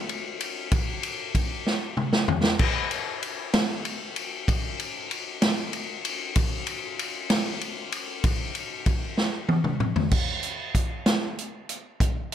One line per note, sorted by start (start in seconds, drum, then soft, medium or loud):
0.09 ride medium
0.40 ride medium
0.71 kick loud
0.71 ride loud
1.03 ride medium
1.35 kick medium
1.35 ride medium
1.67 snare medium
1.97 mid tom medium
2.13 snare medium
2.28 floor tom loud
2.44 snare medium
2.59 kick loud
2.59 crash loud
2.91 ride medium
3.23 ride medium
3.54 snare loud
3.54 ride medium
3.85 ride medium
4.16 ride medium
4.48 kick loud
4.48 ride loud
4.79 ride medium
5.11 ride medium
5.42 snare loud
5.42 ride loud
5.73 ride medium
6.05 ride medium
6.36 kick loud
6.36 ride loud
6.67 ride medium
6.99 ride medium
7.30 snare loud
7.30 ride loud
7.61 ride medium
7.92 ride medium
8.24 kick loud
8.24 ride loud
8.55 ride medium
8.86 kick medium
8.86 ride medium
9.18 snare medium
9.49 high tom medium
9.64 mid tom medium
9.80 mid tom medium
9.96 floor tom medium
10.11 kick loud
10.11 crash medium
10.43 closed hi-hat medium
10.75 kick medium
10.75 closed hi-hat medium
11.06 snare loud
11.06 closed hi-hat medium
11.38 closed hi-hat medium
11.69 closed hi-hat medium
12.00 kick loud
12.00 closed hi-hat medium